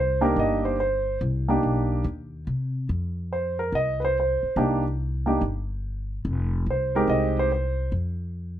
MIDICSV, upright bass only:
0, 0, Header, 1, 3, 480
1, 0, Start_track
1, 0, Key_signature, -3, "minor"
1, 0, Tempo, 421053
1, 1371, Time_signature, 4, 2, 24, 8
1, 9801, End_track
2, 0, Start_track
2, 0, Title_t, "Upright bass"
2, 0, Program_c, 0, 32
2, 0, Note_on_c, 0, 36, 84
2, 369, Note_off_c, 0, 36, 0
2, 412, Note_on_c, 0, 31, 77
2, 1327, Note_off_c, 0, 31, 0
2, 1377, Note_on_c, 0, 36, 81
2, 1822, Note_off_c, 0, 36, 0
2, 1858, Note_on_c, 0, 35, 61
2, 2302, Note_off_c, 0, 35, 0
2, 2329, Note_on_c, 0, 39, 80
2, 2778, Note_off_c, 0, 39, 0
2, 2815, Note_on_c, 0, 48, 77
2, 3261, Note_off_c, 0, 48, 0
2, 3296, Note_on_c, 0, 41, 78
2, 4210, Note_off_c, 0, 41, 0
2, 4244, Note_on_c, 0, 36, 78
2, 4996, Note_off_c, 0, 36, 0
2, 5200, Note_on_c, 0, 36, 80
2, 6120, Note_off_c, 0, 36, 0
2, 6171, Note_on_c, 0, 31, 76
2, 7085, Note_off_c, 0, 31, 0
2, 7122, Note_on_c, 0, 29, 82
2, 7572, Note_off_c, 0, 29, 0
2, 7597, Note_on_c, 0, 36, 71
2, 8049, Note_off_c, 0, 36, 0
2, 8065, Note_on_c, 0, 36, 77
2, 8990, Note_off_c, 0, 36, 0
2, 9028, Note_on_c, 0, 41, 79
2, 9801, Note_off_c, 0, 41, 0
2, 9801, End_track
3, 0, Start_track
3, 0, Title_t, "Muted upright bass strokes"
3, 5048, Note_on_c, 9, 29, 38
3, 5162, Note_off_c, 9, 29, 0
3, 9801, End_track
0, 0, End_of_file